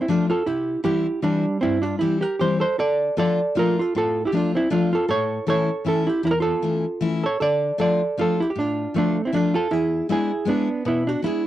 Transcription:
0.01 0.09 C4 medium
0.01 0.10 E4 medium
0.08 0.29 F3 medium
0.08 0.30 A3 medium
0.08 0.30 C4 soft
0.08 0.29 D4 medium
0.08 0.30 D4 medium
0.08 0.28 F4 loud
0.30 0.46 F4 medium
0.30 0.47 A4 medium
0.46 0.76 C3 medium
0.46 0.82 E4 medium
0.46 0.83 G4 loud
0.84 1.05 E3 medium
0.84 1.06 G3 soft
0.84 1.06 C4 medium
0.84 1.20 E4 medium
0.84 1.06 E4 medium
0.84 1.24 G4 loud
1.22 1.44 E3 medium
1.22 1.59 G3 medium
1.22 1.44 G3 soft
1.22 1.45 C4 medium
1.22 1.61 D4 medium
1.22 1.45 E4 medium
1.61 1.92 G2 medium
1.61 1.81 C4 medium
1.61 1.83 E4 loud
1.82 1.99 D4 medium
1.82 2.01 F4 medium
1.99 2.22 E3 medium
1.99 2.22 G3 soft
1.99 2.23 C4 medium
1.99 2.20 E4 medium
1.99 2.23 E4 medium
1.99 2.21 G4 medium
2.21 2.38 G4 medium
2.21 2.39 A#4 medium
2.39 2.62 E3 medium
2.39 2.62 G3 medium
2.39 2.62 C4 soft
2.39 2.62 E4 medium
2.39 2.59 G4 medium
2.39 2.60 C5 medium
2.60 2.77 A4 medium
2.60 2.79 C5 loud
2.79 3.09 D3 soft
2.79 3.15 A4 medium
2.79 3.18 D5 loud
3.17 3.39 F3 medium
3.17 3.39 A3 medium
3.17 3.39 D4 soft
3.17 3.39 F4 medium
3.17 3.54 A4 medium
3.17 3.58 D5 loud
3.55 3.77 F3 medium
3.55 3.77 A3 soft
3.55 3.77 D4 soft
3.55 3.78 F4 medium
3.55 3.76 F4 medium
3.55 3.81 A#4 loud
3.79 3.95 F4 medium
3.79 3.96 A4 medium
3.95 4.24 A2 medium
3.95 4.23 F4 medium
3.95 4.27 A4 loud
4.25 4.33 E4 medium
4.25 4.37 G4 medium
4.32 4.54 F3 medium
4.32 4.54 A3 medium
4.32 4.54 D4 medium
4.32 4.55 F4 medium
4.37 4.56 F4 loud
4.55 4.71 C4 medium
4.55 4.72 E4 loud
4.70 4.92 F3 medium
4.70 4.92 A3 medium
4.70 4.91 D4 medium
4.70 4.92 D4 medium
4.70 4.92 F4 medium
4.93 5.08 F4 medium
4.93 5.08 A4 loud
5.08 5.38 A2 medium
5.08 5.45 A4 medium
5.08 5.49 C#5 loud
5.47 5.68 E3 medium
5.47 5.69 A3 medium
5.47 5.69 C#4 medium
5.47 5.69 E4 medium
5.47 5.84 A4 medium
5.47 5.88 C#5 loud
5.85 6.07 E3 soft
5.85 6.07 A3 medium
5.85 6.07 C#4 medium
5.85 6.06 E4 medium
5.85 6.07 E4 medium
5.85 6.09 A4 medium
6.07 6.23 E4 medium
6.07 6.27 G4 medium
6.23 6.53 E2 medium
6.23 6.32 E4 medium
6.23 6.31 A4 loud
6.31 6.39 A#4 loud
6.40 7.20 F4 medium
6.40 7.22 A4 loud
6.62 6.84 E3 medium
6.62 6.84 A3 soft
6.62 6.85 C#4 soft
6.62 6.85 E4 medium
7.01 7.23 E3 medium
7.01 7.23 A3 medium
7.01 7.23 C#4 medium
7.01 7.23 E4 medium
7.24 7.39 A4 medium
7.24 7.42 C#5 loud
7.40 7.70 D3 medium
7.40 7.77 A4 medium
7.40 7.80 D5 loud
7.78 8.00 F3 medium
7.78 8.01 A3 medium
7.78 8.01 D4 soft
7.78 8.01 F4 medium
7.78 8.16 A4 medium
7.78 8.20 D5 loud
8.17 8.39 F3 medium
8.17 8.39 A3 soft
8.17 8.40 D4 soft
8.17 8.40 F4 medium
8.17 8.38 F4 medium
8.17 8.42 A4 loud
8.40 8.50 E4 medium
8.40 8.49 G4 loud
8.50 8.60 G4 medium
8.56 8.85 A2 medium
8.56 8.93 D4 medium
8.60 8.98 F4 medium
8.94 9.16 F3 medium
8.94 9.16 A3 soft
8.94 9.23 A3 medium
8.94 9.16 D4 soft
8.94 9.24 D4 medium
8.94 9.17 F4 medium
9.25 9.33 C4 medium
9.25 9.36 E4 medium
9.33 9.54 F3 medium
9.33 9.54 A3 medium
9.33 9.54 D4 soft
9.33 9.53 D4 medium
9.33 9.55 F4 medium
9.33 9.53 F4 medium
9.54 9.70 F4 medium
9.54 9.73 A4 medium
9.71 10.00 E2 soft
9.71 10.07 E4 medium
9.71 10.11 G#4 loud
10.09 10.30 G#3 medium
10.09 10.30 B3 medium
10.09 10.31 D4 medium
10.09 10.45 E4 medium
10.09 10.31 E4 medium
10.09 10.50 G#4 loud
10.45 10.67 G#3 medium
10.45 10.68 B3 medium
10.45 10.84 B3 medium
10.45 10.68 D4 medium
10.45 10.86 D4 medium
10.45 10.68 E4 medium
10.85 11.15 B2 medium
10.85 11.06 B3 medium
10.85 11.09 E4 medium
11.07 11.23 D4 medium
11.07 11.26 F#4 medium
11.22 11.45 G#3 soft
11.22 11.45 B3 soft
11.22 11.45 D4 medium
11.22 11.44 E4 medium
11.22 11.45 E4 medium
11.22 11.45 G#4 medium

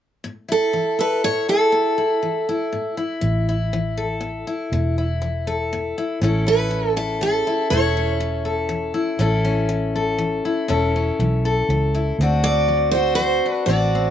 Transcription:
0.24 0.69 A2 medium
0.48 1.48 E4 soft
0.48 1.00 A4 medium
0.73 1.18 E3 medium
0.99 3.97 A4 medium
0.99 1.24 B4 medium
1.24 1.69 A2 medium
1.24 1.49 C#5 medium
1.48 1.97 E4 medium
1.48 2.94 A4 medium
1.72 2.17 A2 medium
1.98 2.48 E4 soft
2.23 2.68 E3 medium
2.49 2.97 E4 medium
2.73 3.17 A2 medium
2.97 3.48 E4 medium
3.21 4.43 A1 medium
3.21 3.67 A2 medium
3.49 4.47 E4 medium
3.73 4.17 E3 medium
3.97 5.47 A4 medium
4.21 4.66 A2 medium
4.47 4.98 E4 medium
4.72 5.92 E1 medium
4.72 5.17 A2 medium
4.98 5.97 E4 soft
5.22 5.66 E3 medium
5.47 6.18 A4 medium
5.73 6.17 A2 medium
5.98 6.19 E4 medium
6.22 7.42 A1 medium
6.22 6.66 A2 medium
6.22 6.46 C#4 medium
6.22 6.96 E4 soft
6.22 7.74 A4 medium
6.47 7.72 C#4 soft
6.47 6.96 B4 medium
6.71 7.15 E3 medium
6.96 7.47 E4 medium
6.96 7.21 A4 medium
7.21 7.66 E3 medium
7.21 7.68 A4 medium
7.47 7.73 E4 medium
7.70 8.91 E1 medium
7.70 8.16 A2 medium
7.70 7.96 C#4 soft
7.70 8.94 E4 medium
7.70 8.45 A4 medium
7.70 8.91 C#5 medium
7.97 9.19 C#4 soft
8.20 8.65 E3 medium
8.45 9.21 A4 medium
8.69 9.14 E3 medium
8.94 9.20 E4 medium
9.19 10.40 A1 medium
9.19 9.64 A2 medium
9.19 9.44 C#4 soft
9.19 10.44 E4 medium
9.19 9.95 A4 medium
9.45 10.66 C#4 soft
9.69 10.14 E3 medium
9.96 10.70 A4 medium
10.18 10.64 E3 medium
10.45 10.67 E4 medium
10.68 11.10 E1 medium
10.68 11.13 A2 medium
10.68 10.94 C#4 medium
10.68 11.93 E4 medium
10.68 11.45 A4 medium
10.96 12.16 C#4 soft
11.19 11.61 B1 medium
11.19 11.64 E3 medium
11.45 12.23 A4 medium
11.69 12.11 C#2 medium
11.69 12.14 E3 medium
11.95 12.16 E4 medium
12.19 13.39 D2 medium
12.19 12.65 D3 medium
12.19 12.45 C4 soft
12.19 13.45 D4 medium
12.23 12.94 F#4 medium
12.44 13.66 C4 soft
12.44 12.90 D5 medium
12.68 13.13 F#3 medium
12.91 13.69 F#4 medium
12.91 13.14 C5 medium
13.15 13.50 C5 medium
13.19 13.64 F#3 medium
13.46 13.70 D4 medium
13.50 13.63 B4 medium
13.66 14.10 A1 medium
13.66 14.10 D3 medium
13.66 13.94 C4 medium
13.66 14.10 D5 medium
13.70 14.10 D4 medium
13.70 14.10 F#4 medium
13.95 14.10 C4 soft

